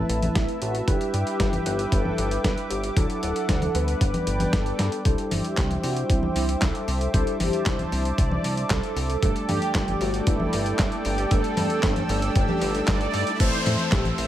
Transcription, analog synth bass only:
0.09 0.30 A1 medium
0.35 0.46 A1 medium
0.62 0.82 A1 loud
0.88 0.98 G1 loud
1.14 1.24 G2 medium
1.40 1.60 G1 loud
1.66 1.86 G1 loud
1.92 2.12 G1 loud
2.18 2.38 G1 medium
2.44 2.54 G1 medium
2.70 2.91 G1 loud
2.97 3.07 D2 medium
3.23 3.33 D1 medium
3.49 3.69 D2 loud
3.75 3.95 D2 loud
4.01 4.11 G1 medium
4.27 4.47 G1 medium
4.53 4.73 G1 medium
4.79 4.89 G2 medium
5.05 5.15 C2 loud
5.31 5.41 G1 medium
5.57 5.78 C2 medium
5.84 6.04 C2 loud
6.10 6.30 C2 loud
6.36 6.56 C2 medium
6.62 6.72 C2 medium
6.88 7.08 C2 loud
7.14 7.24 C2 loud
7.40 7.50 G1 medium
7.66 7.86 C2 loud
7.92 8.12 C2 loud
8.18 8.38 C2 loud
8.44 8.64 C2 medium
8.70 8.80 C2 medium
8.96 9.17 C2 loud
9.23 9.33 G1 loud
9.49 9.59 G2 medium
9.75 9.95 G1 loud
10.01 10.21 G1 loud
10.27 10.47 G1 loud
10.53 10.73 G1 medium
10.79 10.89 G1 medium
11.05 11.25 G1 loud
11.31 11.41 G1 loud
11.57 11.67 G2 medium
11.84 12.04 G1 loud
12.09 12.30 G1 loud
12.36 12.46 G1 medium
12.62 12.82 G1 medium
12.88 13.08 G1 medium
13.14 13.24 G2 medium
13.40 13.50 A1 loud
13.66 13.76 A2 medium
13.92 14.12 A1 loud
14.18 14.27 A1 loud

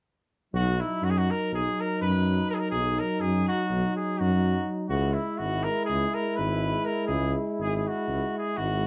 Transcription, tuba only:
0.53 0.80 B1 loud
1.02 1.29 F#2 medium
1.52 1.66 B1 medium
2.02 2.41 F#2 medium
2.72 2.99 B1 medium
3.21 3.48 F#2 medium
3.70 3.85 B1 medium
4.21 4.59 F#2 medium
4.90 5.17 C#2 loud
5.39 5.67 G#1 medium
5.90 6.04 C#2 medium
6.39 6.77 G#1 medium
7.09 7.36 C#2 loud
7.59 7.86 G#1 medium
8.08 8.22 C#2 medium
8.58 8.87 G#1 medium

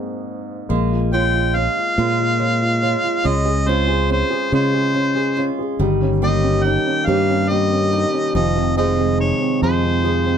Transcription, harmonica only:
1.13 1.57 G5 medium
1.55 3.28 F5 medium
3.26 3.70 D#5 medium
3.69 4.11 C5 medium
4.12 4.51 C5 medium
4.54 5.45 C5 medium
6.24 6.65 D#5 medium
6.63 7.08 G5 medium
7.06 7.50 F5 medium
7.49 8.34 D#5 medium
8.35 8.74 D#5 medium
8.78 9.17 D#5 medium
9.21 9.60 C#5 medium
9.63 10.38 C5 medium

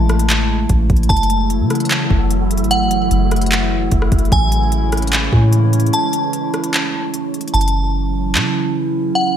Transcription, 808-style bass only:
0.00 0.66 A1 loud
0.70 0.89 A1 loud
0.90 1.09 A1 loud
1.10 1.62 F#1 loud
1.60 2.08 C#3 loud
2.10 2.63 F#1 loud
2.61 2.88 G#1 loud
2.86 3.10 F#1 loud
3.11 3.89 F#1 loud
3.92 4.11 F#1 loud
4.12 4.31 F#1 loud
4.32 5.29 A1 loud
5.33 5.91 A2 loud
7.54 8.36 F#1 loud
8.35 9.11 C#3 loud

